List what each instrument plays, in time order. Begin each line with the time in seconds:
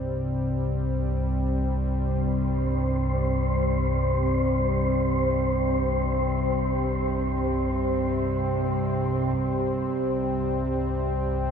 Already playing: synth drone C2 G2, analog synth pad C3 G3 C4
1.49 synth texture C4 C5
9.37 synth drone C2 G2